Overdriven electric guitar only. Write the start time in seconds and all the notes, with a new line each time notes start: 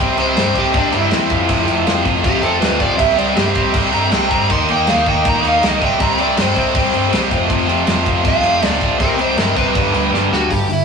0.20 C5
0.59 G4
0.76 D4
0.97 E4
2.25 G4
2.42 A4
2.61 B4
2.82 D5
2.98 E5
3.18 D5
3.36 G4
3.94 A#5
4.13 G5
4.31 A#5
4.52 C6
4.72 G5
4.89 F5
5.09 G5
5.29 A#5
5.48 F5
5.66 D#5
5.85 G5
6.02 A#5
6.21 D5
6.41 C5
8.28 F5
8.65 D5
9.02 A#4
9.21 C5
9.39 A#4
9.57 B4
10.33 F#4
10.52 G4
10.73 E4